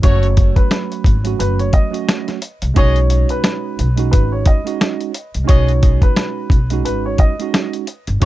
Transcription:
0.02 upright bass F#1, tine electric piano F#3 A3 C#4 F#4, trumpet section A3 F#4 C#5, upright piano C#5, kick, closed hi-hat
0.23 closed hi-hat
0.37 kick, closed hi-hat
0.56 upright piano B4, kick, closed hi-hat
0.71 snare, closed hi-hat
0.92 closed hi-hat
1.04 upright bass G#1, kick, closed hi-hat
1.24 tine electric piano F#3 A3 C#4 F#4, closed hi-hat
1.39 upright bass F#1, upright piano B4, closed hi-hat
1.59 upright piano C#5, closed hi-hat
1.73 upright piano D#5, kick, closed hi-hat
1.90 tine electric piano F#3 A3 C#4 F#4, closed hi-hat
2.09 snare, closed hi-hat
2.28 snare, closed hi-hat
2.42 closed hi-hat
2.62 upright bass C2, closed hi-hat
2.74 upright bass B1, tine electric piano G#3 C#4 D#4 F#4, trumpet section B3 G#4 D#5, upright piano C#5, kick, closed hi-hat
2.96 closed hi-hat
3.10 closed hi-hat
3.29 upright piano B4, closed hi-hat
3.44 snare, closed hi-hat
3.79 upright bass B1, closed hi-hat
3.96 tine electric piano G#3 C#4 D#4 F#4, closed hi-hat
4.11 upright bass G#1, upright piano B4, kick, closed hi-hat
4.32 upright piano C#5
4.46 upright piano D#5, kick, closed hi-hat
4.64 tine electric piano G#3 C#4 D#4 F#4, closed hi-hat
4.81 snare, closed hi-hat
5.01 closed hi-hat
5.14 closed hi-hat
5.34 upright bass C2, closed hi-hat
5.44 tine electric piano G#3 C#4 D#4 F#4, trumpet section B3 G#4 D#5, upright piano C#5
5.49 upright bass B1, kick, closed hi-hat
5.68 closed hi-hat
5.83 kick, closed hi-hat
6.02 upright piano B4, kick, closed hi-hat
6.16 snare, closed hi-hat
6.50 upright bass B1, kick, closed hi-hat
6.70 tine electric piano G#3 C#4 D#4 F#4, closed hi-hat
6.85 upright bass G#1, upright piano B4, closed hi-hat
7.06 upright piano C#5
7.18 upright piano D#5, kick, closed hi-hat
7.39 tine electric piano G#3 C#4 D#4 F#4, closed hi-hat
7.54 snare, closed hi-hat
7.73 closed hi-hat
7.87 closed hi-hat
8.07 upright bass G1, closed hi-hat
8.20 tine electric piano F#3 A3, trumpet section A3 F#4 C#5, kick, closed hi-hat

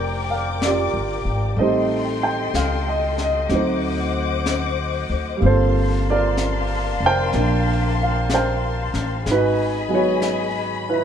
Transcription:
Already playing: upright bass F1, grand piano G3 C4 D4 F4 G4 C5 D5 G5, string section A#4 D5 G5 D6
0.30 grand piano F5
0.62 grand piano F4 G4 D5, brush sweep, snare, hi-hat pedal
0.94 upright bass G1
1.25 upright bass G#1
1.56 upright bass A1, grand piano G3 A3 C4 D#5, string section A4 D#5 G5 C6, brush sweep
1.61 grand piano D#4 G4 C5
2.23 grand piano G5
2.54 upright bass C#2, grand piano F5, brush sweep, snare, hi-hat pedal
2.88 grand piano D#5
3.18 grand piano D#5, snare
3.49 upright bass D2, grand piano F#3 A3 C4 D#4, string section C5 F#5 D6, brush sweep, snare
3.54 grand piano D#4 F#4 C5
4.46 brush sweep, snare, hi-hat pedal
5.10 upright bass D2
5.37 grand piano G3
5.41 upright bass G1, grand piano A#3 C4, string section A#3 F5 A5 C6, brush sweep
5.46 grand piano F4 A4 C5
6.10 grand piano F4 A#4 D5
6.37 brush sweep, snare, hi-hat pedal
7.00 upright bass F1
7.06 grand piano A#4 C5 G5
7.33 upright bass A#1, grand piano A#3 D4, brush sweep, snare
8.03 grand piano F5
8.30 brush sweep, snare, hi-hat pedal
8.34 grand piano A#4 C5 G5
8.94 upright bass A1, snare
9.24 upright bass G#1, string section G#4 D#5 G#5 B5, brush sweep, snare
9.30 grand piano D#4 F#4 B4
9.89 grand piano F#3 G#3 B3 D#5
9.94 grand piano F#4 C#5
10.22 brush sweep, snare, hi-hat pedal
10.89 grand piano E4 F4 B4

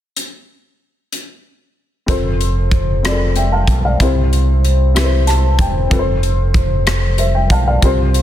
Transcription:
0.17 closed hi-hat
1.12 closed hi-hat
2.06 fingered electric bass F1, upright piano C4 F4 A4 C5, kick, closed hi-hat
2.41 closed hi-hat
2.71 kick, closed hi-hat
3.03 upright piano C4 F4 G#4 D5, cross-stick, closed hi-hat
3.11 upright piano A4
3.36 upright piano E5 G5, closed hi-hat
3.52 upright piano F5 A5
3.67 fingered electric bass B1, kick, closed hi-hat
3.85 upright piano D5 F5
4.00 fingered electric bass C2, upright piano C3 C4 E4 G4 C5, kick, closed hi-hat
4.33 closed hi-hat
4.65 closed hi-hat
4.94 upright piano C4 E4 G4 B4, cross-stick, closed hi-hat
5.04 upright piano C5
5.27 upright piano A5, cross-stick, closed hi-hat
5.59 fingered electric bass E1, upright piano G5, kick, closed hi-hat
5.89 fingered electric bass F1, upright piano C4 F4 A4 B4, kick, closed hi-hat
5.99 upright piano C5
6.23 closed hi-hat
6.54 kick, closed hi-hat
6.87 cross-stick, closed hi-hat
7.18 upright piano C5 E5, closed hi-hat
7.35 upright piano E5 G5
7.50 fingered electric bass B1, upright piano F5 A5, kick, closed hi-hat
7.68 upright piano D5 F5
7.81 fingered electric bass C2, upright piano C3 C4 F4 G4 C5, kick, closed hi-hat
8.14 closed hi-hat

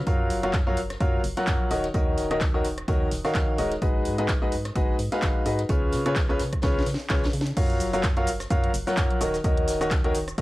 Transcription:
0.07 fm bass F#2, grand piano F#3 F4 F#4 A#4 C#5 F5, kick, closed hi-hat
0.30 fm bass F#1, closed hi-hat, open hi-hat
0.43 grand piano F#3 F4 F#4 A#4 C#5 F5, closed hi-hat
0.53 fm bass F#2, kick, snare, clap, closed hi-hat
0.67 grand piano F#3 F4 F#4 A#4 C#5 F5
0.77 fm bass F#1, closed hi-hat, open hi-hat
0.90 cross-stick, snare, closed hi-hat
1.00 fm bass F#2, grand piano F#3 F4 F#4 A#4 C#5 F5, kick, closed hi-hat
1.23 fm bass F#1, closed hi-hat, open hi-hat
1.37 grand piano F#3 F4 F#4 A#4 C#5 F#5, snare, closed hi-hat
1.47 fm bass F#2, kick, snare, clap, closed hi-hat
1.71 fm bass D#1, grand piano D#3 D#4 F#4 A#4 C#5 D#5, closed hi-hat, open hi-hat
1.84 snare, closed hi-hat
1.94 fm bass D#2, grand piano D#3 D#4 F#4 A#4 C#5 D#5, kick, closed hi-hat
2.17 fm bass D#1, snare, closed hi-hat, open hi-hat
2.31 grand piano D#3 D#4 F#4 A#4 C#5 D#5, cross-stick, closed hi-hat
2.40 fm bass D#2, kick, snare, clap, closed hi-hat
2.54 grand piano D#3 D#4 F#4 A#4 C#5 D#5
2.65 fm bass D#1, closed hi-hat, open hi-hat
2.78 cross-stick, closed hi-hat
2.88 fm bass D#2, grand piano D#3 D#4 F#4 A#4 C#5 D#5, kick, closed hi-hat
3.11 fm bass D#1, snare, closed hi-hat, open hi-hat
3.25 grand piano D#3 D#4 F#4 A#4 C#5 F5, cross-stick, snare, open hi-hat
3.34 fm bass D#2, kick, snare, clap, closed hi-hat
3.58 fm bass D#1, grand piano G#3 D#4 F#4 A#4 C#5 D#5, closed hi-hat, open hi-hat
3.71 snare, closed hi-hat
3.82 fm bass G#1, grand piano G#3 D#4 F#4 G#4 B4 D#5, kick, closed hi-hat
4.05 fm bass G#2, closed hi-hat, open hi-hat
4.18 grand piano G#3 D#4 F#4 G#4 B4 D#5, closed hi-hat
4.28 fm bass G#1, kick, snare, clap, closed hi-hat
4.42 grand piano G#3 D#4 F#4 G#4 B4 D#5
4.52 fm bass G#2, closed hi-hat, open hi-hat
4.64 cross-stick, snare, closed hi-hat
4.75 fm bass G#1, grand piano G#3 D#4 F#4 G#4 B4 D#5, kick, closed hi-hat
4.98 fm bass G#2, closed hi-hat, open hi-hat
5.12 grand piano G#3 D#4 F#4 G#4 B4 F5, snare, closed hi-hat
5.22 fm bass G#1, kick, snare, clap, closed hi-hat
5.46 fm bass G#2, grand piano D#4 F#4 G#4 B4 D#5, closed hi-hat, open hi-hat
5.58 snare, closed hi-hat
5.69 fm bass C#2, grand piano C#3 C#4 F4 G#4 B4 C#5, kick, closed hi-hat
5.92 fm bass C#3, snare, closed hi-hat, open hi-hat
6.06 grand piano C#3 C#4 F4 G#4 B4 C#5, cross-stick, closed hi-hat
6.16 fm bass C#2, kick, snare, clap, closed hi-hat
6.29 grand piano C#3 C#4 F4 G#4 B4 C#5, clap
6.40 fm bass C#3, snare, closed hi-hat, open hi-hat
6.53 kick, cross-stick, closed hi-hat
6.62 fm bass C#2, grand piano C#3 C#4 F4 G#4 B4 C#5, kick, snare, closed hi-hat
6.79 snare
6.86 fm bass C#3, snare, closed hi-hat, open hi-hat
6.94 snare
7.00 open hi-hat
7.09 fm bass C#2, grand piano C#3 C#4 F4 G#4 B4 C#5, kick, snare, clap, closed hi-hat
7.23 snare, closed hi-hat
7.25 snare
7.33 fm bass C#3, open hi-hat
7.41 snare
7.46 closed hi-hat
7.57 fm bass F#2, grand piano F#3 F4 F#4 A#4 C#5 F5, kick, closed hi-hat, crash, shaker
7.70 closed hi-hat
7.80 fm bass F#1, closed hi-hat, open hi-hat, shaker
7.93 grand piano F#3 F4 F#4 A#4 C#5 F5, closed hi-hat, shaker
8.03 fm bass F#2, kick, snare, clap, closed hi-hat, shaker
8.17 grand piano F#3 F4 F#4 A#4 C#5 F5, closed hi-hat
8.27 fm bass F#1, closed hi-hat, open hi-hat, shaker
8.40 cross-stick, snare, closed hi-hat, shaker
8.50 fm bass F#2, grand piano F#3 F4 F#4 A#4 C#5 F5, kick, closed hi-hat, shaker
8.64 closed hi-hat
8.74 fm bass F#1, closed hi-hat, open hi-hat, shaker
8.87 grand piano F#3 F4 F#4 A#4 C#5 F#5, snare, closed hi-hat, shaker
8.97 fm bass F#2, kick, snare, clap, closed hi-hat, shaker
9.11 closed hi-hat
9.21 fm bass D#1, grand piano D#3 D#4 F#4 A#4 C#5 D#5, closed hi-hat, open hi-hat, shaker
9.34 snare, closed hi-hat, shaker
9.44 fm bass D#2, grand piano D#3 D#4 F#4 A#4 C#5 D#5, kick, closed hi-hat, shaker
9.57 closed hi-hat
9.67 fm bass D#1, snare, closed hi-hat, open hi-hat, shaker
9.81 grand piano D#3 D#4 F#4 A#4 C#5 D#5, cross-stick, closed hi-hat, shaker
9.91 fm bass D#2, kick, snare, clap, closed hi-hat, shaker
10.04 grand piano D#3 D#4 F#4 A#4 C#5 D#5, closed hi-hat
10.15 fm bass D#1, closed hi-hat, open hi-hat, shaker
10.28 cross-stick, closed hi-hat, shaker
10.38 fm bass D#2, grand piano D#3 D#4 F#4 A#4 C#5 D#5, kick, closed hi-hat

